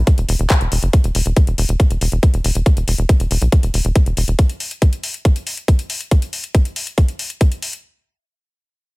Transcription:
Already playing: B3 E4 E5 B5
0.07 kick, closed hi-hat
0.18 E1, closed hi-hat
0.29 E1, open hi-hat
0.39 E1, closed hi-hat
0.50 kick, clap, closed hi-hat
0.61 E1, closed hi-hat
0.72 E1, open hi-hat
0.83 F#1, closed hi-hat
0.93 kick, closed hi-hat
1.04 E1, closed hi-hat
1.15 E1, open hi-hat
1.26 E1, closed hi-hat
1.36 kick, closed hi-hat
1.47 E1, closed hi-hat
1.58 E1, open hi-hat
1.69 E1, closed hi-hat
1.80 kick, closed hi-hat
1.91 E1, closed hi-hat
2.01 E1, open hi-hat
2.12 E1, closed hi-hat
2.23 kick, closed hi-hat
2.34 E1, closed hi-hat
2.44 E1, open hi-hat
2.55 E1, closed hi-hat
2.66 kick, closed hi-hat
2.77 E1, closed hi-hat
2.88 E1, open hi-hat
2.98 E1, closed hi-hat
3.09 kick, closed hi-hat
3.20 E1, closed hi-hat
3.31 E1, open hi-hat
3.42 B1, closed hi-hat
3.52 kick, closed hi-hat
3.63 E1, closed hi-hat
3.74 E1, open hi-hat
3.85 E1, closed hi-hat
3.96 kick, closed hi-hat
4.06 E1, closed hi-hat
4.17 E1, open hi-hat
4.28 E1, closed hi-hat
4.39 kick, closed hi-hat
4.49 closed hi-hat
4.60 open hi-hat
4.71 closed hi-hat
4.82 kick, closed hi-hat
4.93 closed hi-hat
5.03 open hi-hat
5.14 closed hi-hat
5.25 kick, closed hi-hat
5.36 closed hi-hat
5.47 open hi-hat
5.57 closed hi-hat
5.68 kick, closed hi-hat
5.79 closed hi-hat
5.90 open hi-hat
6.01 closed hi-hat
6.11 kick, closed hi-hat
6.22 closed hi-hat
6.33 open hi-hat
6.44 closed hi-hat
6.55 kick, closed hi-hat
6.65 closed hi-hat
6.76 open hi-hat
6.87 closed hi-hat
6.98 kick, closed hi-hat
7.08 closed hi-hat
7.19 open hi-hat
7.30 closed hi-hat
7.41 kick, closed hi-hat
7.52 closed hi-hat
7.62 open hi-hat
7.73 closed hi-hat

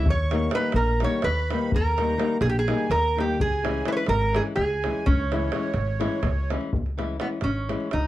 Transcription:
0.06 D#2 C#6, davul low
0.10 C#5
0.31 D#3 G3 A#3 D#4, davul high
0.51 D#3 G3 A#3 D#4 B4, davul high
0.56 B5
0.62 davul high
0.72 A#1 A#4 A#5, davul high
0.87 davul high
1.00 D#3 G3 A#3 D#4 C#5, davul high
1.06 C#6
1.22 D#2 B4 B5, davul high
1.36 davul high
1.50 D#3 G3 A#3 D#4, davul high
1.72 D#2 A#4 A#5, davul low
1.98 D#3 G3 A#3 D#4, davul high
2.17 D#3 G3 A#3 D#4, davul high
2.30 davul high
2.41 A#1 G#4 G#5, davul high
2.49 G4 G5
2.55 G#4, davul high
2.60 G#5
2.67 D#3 G3 A#3 D#4, davul high
2.90 D#2 A#4 A#5, davul high
3.05 davul high
3.17 D#3 G3 A#3 D#4 G4, davul high
3.21 G5
3.40 C#2 G#4 G#5, davul low
3.64 E3 G#3 C#4 E4, davul high
3.85 E3 G#3 C#4 E4 B4, davul high
3.90 C#5 B5
3.95 B4 C#6, davul high
4.01 B5
4.06 G#1 A#4, davul high
4.13 A#5
4.20 davul high
4.33 E3 G#3 C#4 E4 G#4, davul high
4.38 G#5
4.56 C#2 G#4, davul high
4.60 G#5
4.70 davul high
4.84 E3 G#3 C#4 E4, davul high
5.06 C#2 C#4, davul low
5.10 C#5
5.20 davul high
5.32 E3 G#3 C#4 E4, davul high
5.42 davul high
5.52 E3 G#3 C#4 E4, davul high
5.63 davul high
5.74 G#1, davul high
5.88 davul high
6.00 E3 G#3 C#4 E4, davul high
6.12 davul high
6.23 C#2, davul high, davul low
6.50 E3 G#3 C#4 E4, davul high
6.61 davul high
6.73 C#2, davul low
6.86 davul high
6.98 E3 G#3 C#4 E4, davul high
7.20 E3 G#3 B3 C#4 E4, davul high
7.41 G#1 C#4, davul high
7.69 E3 G#3 C#4 E4, davul high
7.80 davul high
7.91 C#2 D#4, davul high

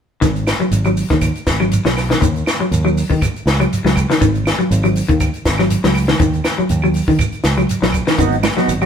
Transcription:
0.21 G#1 D#3, kick, snare, closed hi-hat, shekere
0.36 closed hi-hat, shekere
0.47 snare, closed hi-hat, claves, shekere
0.60 F#3, muted fingered electric bass stroke, shekere
0.71 G#1, closed hi-hat, shekere
0.85 F#3, closed hi-hat, claves, shekere
0.97 open hi-hat, shekere
1.10 D#2 D#3, kick, snare, closed hi-hat, shekere
1.21 kick, closed hi-hat, claves, shekere
1.35 closed hi-hat, shekere
1.47 G#1, kick, snare, closed hi-hat, shekere
1.60 F#3, claves, shekere
1.72 closed hi-hat, shekere
1.85 B1 F#3, snare, closed hi-hat, shekere
1.97 snare, open hi-hat, claves, shekere
2.10 D#3, snare, closed hi-hat, shekere
2.21 D#2 D#3, kick, closed hi-hat, shekere
2.36 closed hi-hat, shekere
2.46 snare, closed hi-hat, claves, shekere
2.60 F#3, muted fingered electric bass stroke, shekere
2.71 D#2, closed hi-hat, shekere
2.85 F#3, claves, shekere
2.97 open hi-hat, shekere
3.10 D#3, kick, shekere
3.22 kick, closed hi-hat, claves, shekere
3.34 muted fingered electric bass stroke, closed hi-hat, shekere
3.46 C#2, snare, closed hi-hat, shekere
3.60 F#3, closed hi-hat, claves, shekere
3.73 closed hi-hat, shekere
3.84 C#2 F#3, snare, shekere
3.96 kick, closed hi-hat, claves, shekere
4.10 D#3, snare, closed hi-hat, shekere
4.21 G#1 D#3, kick, closed hi-hat, shekere
4.35 closed hi-hat, shekere
4.46 snare, closed hi-hat, claves, shekere
4.59 F#3, muted fingered electric bass stroke, shekere
4.71 G#1, closed hi-hat, shekere
4.83 F#3, closed hi-hat, claves, shekere
4.96 open hi-hat, shekere
5.08 D#2 D#3, kick, closed hi-hat, shekere
5.20 kick, closed hi-hat, claves, shekere
5.34 closed hi-hat, shekere
5.45 G#1, kick, snare, closed hi-hat, shekere
5.58 F#3, snare, claves, shekere
5.70 closed hi-hat, shekere
5.84 C#2 F#3, snare, closed hi-hat, shekere
5.95 open hi-hat, claves, shekere
6.08 D#3, snare, closed hi-hat, shekere
6.19 D#2 D#3, kick, closed hi-hat, shekere
6.33 closed hi-hat, shekere
6.44 snare, closed hi-hat, claves, shekere
6.58 F#3, muted fingered electric bass stroke, shekere
6.69 D#2, closed hi-hat, shekere
6.82 F#3, claves, shekere
6.94 open hi-hat, shekere
7.08 D#3, kick, shekere
7.19 kick, closed hi-hat, claves, shekere
7.32 muted fingered electric bass stroke, closed hi-hat, shekere
7.44 C#2, snare, closed hi-hat, shekere
7.57 F#3, closed hi-hat, claves, shekere
7.69 closed hi-hat, shekere
7.82 A#1 F#3, snare, shekere
7.92 kick, closed hi-hat, claves, shekere
8.07 D#3, snare, closed hi-hat, shekere
8.18 G#1 D#3 F#3 B3 D#4 F#4, kick, closed hi-hat, shekere
8.32 closed hi-hat, shekere
8.43 snare, closed hi-hat, high conga, claves, shekere
8.57 F#3 B3 D#4 F#4, muted fingered electric bass stroke, snare, shekere
8.68 G#1, closed hi-hat, shekere
8.82 F#3 D#4 F#4, closed hi-hat, claves

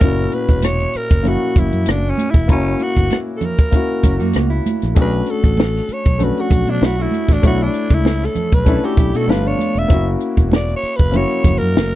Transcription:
Already playing: A#4
0.00 F#1 A#2 C#4 E4 F#4, kick, closed hi-hat, muted conga
0.32 B4, closed hi-hat, muted conga
0.49 E1, kick, closed hi-hat
0.62 C#5, cross-stick, closed hi-hat, high conga
0.79 closed hi-hat
0.94 A#4, muted fingered electric bass stroke, closed hi-hat
1.10 F#1, kick, closed hi-hat
1.23 A#3 C#4 E4 F#4, closed hi-hat, muted conga, low conga
1.28 F#4
1.56 F#1 E4, kick, closed hi-hat, muted conga, low conga
1.72 F#2, closed hi-hat
1.86 F#1, cross-stick, closed hi-hat, high conga
1.90 D4
2.10 C#4
2.18 closed hi-hat, high conga
2.31 E1 E4, kick, closed hi-hat
2.48 F#1 A#3 C#4 E4 F#4, kick, closed hi-hat, muted conga
2.52 C#4
2.79 F#4, closed hi-hat, muted conga
2.97 G1, kick, closed hi-hat
3.10 cross-stick, closed hi-hat, high conga
3.37 A4
3.41 closed hi-hat, low conga
3.45 A#4
3.58 kick, closed hi-hat
3.71 A#3 C#4 E4 F#4, kick, closed hi-hat, muted conga
4.03 F#1 C#4 A#4, kick, closed hi-hat, muted conga
4.20 F#2 A#3 F#4, closed hi-hat
4.33 C#2, cross-stick, closed hi-hat, high conga
4.50 E4
4.66 closed hi-hat, high conga
4.82 A#1, cross-stick, closed hi-hat
4.95 B1 A3 C#4 D4 F#4, kick, closed hi-hat, muted conga
5.01 B4
5.13 closed hi-hat
5.26 closed hi-hat, muted conga
5.31 A4
5.44 A1, kick, closed hi-hat
5.57 snare, high conga
5.74 snare, closed hi-hat
5.89 muted fingered electric bass stroke, closed hi-hat
5.93 C#5
6.05 B1, kick, closed hi-hat
6.19 A3 C#4 D4 F#4, closed hi-hat, muted conga, low conga
6.24 B4
6.37 F#4, closed hi-hat
6.50 B1, kick, closed hi-hat, muted conga, low conga
6.67 B2 F#3 D4, closed hi-hat
6.81 B1 E4, snare, high conga
6.86 F#4
6.99 A3 E4 F#4, closed hi-hat
7.11 closed hi-hat, high conga
7.28 A1, kick, snare, closed hi-hat
7.33 D4
7.42 B1 A3 D4 E4 C#5, kick, closed hi-hat, muted conga
7.47 F#4
7.59 D4, closed hi-hat
7.74 closed hi-hat, muted conga
7.90 C#2, kick, closed hi-hat
7.95 E4
8.05 snare, high conga
8.21 snare, closed hi-hat
8.25 A4
8.35 muted fingered electric bass stroke, closed hi-hat, low conga
8.52 B1 B4, kick, closed hi-hat
8.65 A3 C#4 D4 E4 A4, kick, closed hi-hat, muted conga
8.84 A3 F#4 G4
8.97 B1 E4, kick, closed hi-hat, muted conga
9.14 B2 A3 F#4 A4, closed hi-hat
9.26 G1 G3 A3 B3 D4 E4 F4 B4, high conga
9.30 snare
9.46 F3 D4 C#5
9.59 closed hi-hat, high conga
9.75 E1 E5, closed hi-hat
9.88 F#1 A#3 C#4 E4, kick, closed hi-hat, muted conga
9.92 F#4
10.20 closed hi-hat
10.37 E1, kick, closed hi-hat
10.51 snare, high conga
10.56 D5
10.68 closed hi-hat
10.76 C#5
10.82 muted fingered electric bass stroke, open hi-hat
10.96 F#1 B4, kick, closed hi-hat
11.11 A#3 C#4 E4 F#4, closed hi-hat, muted conga, low conga
11.16 C#5
11.30 closed hi-hat
11.44 F#1, kick, closed hi-hat, muted conga, low conga
11.58 F#2 A#4, closed hi-hat
11.75 F#1, snare, high conga

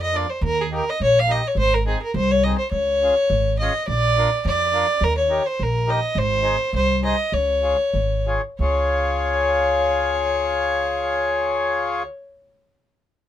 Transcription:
Already playing: F2
0.02 D#5
0.13 A#3 D4 F4 D5
0.30 C5
0.41 D#2 A#4
0.61 G#4
0.71 A#3 D#4 G4
0.75 A#4
0.89 D#5
1.00 A#1 C#5
1.19 F5
1.27 A#3 D#4 G4 D#5
1.47 C#5
1.55 G#1 C5
1.74 A#4
1.86 C4 D#4 G#4
2.02 A#4
2.14 C2 C5
2.31 C#5
2.43 C4 D#4 G#4 D#5
2.58 C5
2.71 C#2 C#5
3.02 C#4 F4 G#4
3.30 G#1
3.58 C#4 F4 G#4 D#5
3.88 A#1 D5
4.18 D4 F4 A#4
4.45 F2 D5
4.73 D4 F4 A#4
5.01 D#2 A#4
5.17 C#5
5.29 D#4 G4 A#4
5.46 C5
5.60 A#1 A#4
5.87 D#4 G4 A#4 D#5
6.15 G#1 C5
6.43 D#4 G#4 C5
6.73 C2 C5
7.02 D#4 G#4 C5 D#5
7.32 C#2 C#5
7.63 F4 G#4 C#5
7.94 G#1
8.27 F4 G#4 C#5
8.59 C#2 F4 G#4 C#5

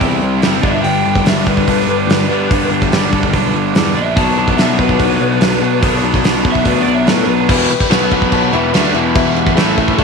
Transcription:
Already playing: C3 G3 C4 G5
0.00 E2 C3 G3 C4 E4, kick, open hi-hat
0.22 C2
0.41 F#1 C3 G3 C4 E4, snare, open hi-hat
0.62 G1 G2 D3 G3 B3 D4 E5, kick
0.83 G1 G2 D3 G3 B3 D4 G4 G5, open hi-hat
1.04 G1 G3 B3 D4
1.15 kick
1.24 G1 D3 G3 B3 D4 E5, snare, open hi-hat
1.45 G1 G3 B3 D4 B4, kick
1.57 kick
1.66 G1 G2 D3 G3 B3 D4, kick, open hi-hat
1.87 G1
2.07 G1 D3 G3 B3 D4, snare, open hi-hat
2.28 G2 D3 G3 B3 D4
2.50 G1 G2 D3 G3 B3 D4, kick, open hi-hat
2.70 G1 G3 B3 D4
2.82 kick
2.91 G1 D3 G3 B3 D4, snare, open hi-hat
3.12 G1 G3 B3 D4, kick
3.23 kick
3.33 B1 G2 D3 G3 B3 D4, kick, open hi-hat
3.54 G1
3.74 E2 D3 G3 B3 D4, snare, open hi-hat
3.95 A#1 G3 B3 D4 E5
4.16 B1 B2 F#3 B3 D4 F#4 A5, kick, open hi-hat
4.36 B1 F#3 B3 D4
4.48 kick
4.57 B1 B2 F#3 B3 D4 E5, snare, open hi-hat
4.78 B1 F#3 B3 D4 B4, kick
4.89 kick
4.98 B1 B2 F#3 B3 D4, kick, open hi-hat
5.20 B1
5.40 B1 B2 F#3 B3 D4, snare, open hi-hat
5.61 B2 F#3 B3 D4
5.82 B1 B2 F#3 B3 D4, kick, open hi-hat
6.02 B1 F#3 B3 D4
6.14 kick
6.23 B1 B2 F#3 B3 D4, snare, open hi-hat
6.44 B1 F#3 B3 D4, kick
6.52 E5, kick
6.65 D2 B2 F#3 B3 D4 B4, kick, open hi-hat
6.81 D5
6.87 B1
6.94 E5
7.07 A2 B2 F#3 B3 D4 B4, snare, open hi-hat
7.18 A3 B3 B4
7.25 B1 C4 D4
7.29 F#3 B3 E4 F4
7.36 G4 A4
7.41 B4 C5
7.47 E1 E2 B2 E3 G3 B3 E4 G4 B4 D5, kick, crash
7.68 B3 E4 G4 B4, muted overdriven electric guitar stroke, crash
7.80 kick
7.89 B1 B2 F#3 B3 F#4 B4 F#5, snare, crash
8.11 B3 F#4 B4 F#5, kick, crash
8.22 kick
8.31 B3 F#4 B4 A5, kick, crash
8.52 E1 E2 B2 E3 B3 E4 G4 B4 E5, crash
8.73 D2 D3 A3 D4, snare, crash
8.93 E1 E2 B2 E3 E4 G4 B4 E5, crash
9.14 E4 G4 B4 E5, kick, crash
9.36 E4 G4 B4 E5, crash
9.46 kick
9.55 A1 A2 E3 A3 E4 A4 E5 A5, snare, crash
9.76 E4 A4 E5 A5, kick, crash
9.88 kick
9.98 D2 D3 A3 D4 A4 D5 A5, kick, crash

